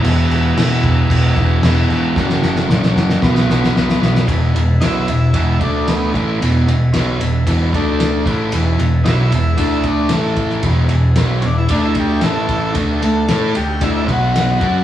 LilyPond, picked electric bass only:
\new Staff \with { instrumentName = "Picked electric bass" } { \clef bass \time 4/4 \key e \major \tempo 4 = 113 e,,8 e,,8 gis,,8 e,,8 e,,8 e,,8 e,,8 gis,,8 | fis,,8 fis,,8 ais,,8 fis,,8 b,,8 b,,8 b,,8 b,,8 | \key e \mixolydian e,,8 e,,8 b,,8 e,,8 e,,8 d,4 a,,8 | e,,8 e,,8 b,,8 e,,8 e,,8 d,4 a,,8 |
e,,8 e,,8 b,,8 e,,8 d,4 a,,4 | e,,8 e,,8 b,,8 e,,8 d,4 a,,4 | d,8 d,8 a,8 d,8 d,8 b,,4 fis,8 | }